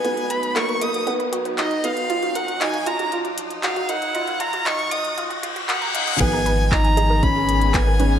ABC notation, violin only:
X:1
M:4/4
L:1/8
Q:1/4=117
K:G#dor
V:1 name="Violin"
g b c' d' z2 d e- | e f g a z2 e f- | f a c' d' z2 f2 | g2 a2 b2 g2 |]